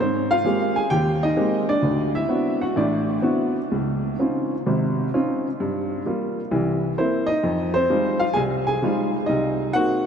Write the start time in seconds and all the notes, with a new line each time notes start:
0.00 G#2 C4 C5
0.31 F4 F5
0.45 G#3 A#3 C4 G4
0.76 G#4 G#5
0.90 D#2 G4 G5
1.23 D#4 D#5
1.37 G#3 A#3 C4 G4
1.69 D4 D5
1.82 D2
2.15 E4 E5
2.29 B3 C4 D4 E4 F#4
2.61 F#4 F#5
2.76 A1 A2 D4 D5
3.22 B3 C4 D4 E4 F#4
3.72 C#2
4.19 C4 C#4 D#4 F4
4.66 G#1 C3
5.14 C4 C#4 D#4 F4
5.60 G2
6.06 G3 A#3 F4
6.51 C2 E3
6.98 A#3 C4 E4 C5
7.26 D#4 D#5
7.43 F2
7.74 C4 C5
7.90 G3 G#3 D#4 F4
8.20 F4 F5
8.33 C2 G#4 G#5
8.67 G#4 G#5
8.82 G3 G#3 D#4 F4
9.26 C2 D#4 D#5
9.73 A#3 C4 D#4 F#4 F#5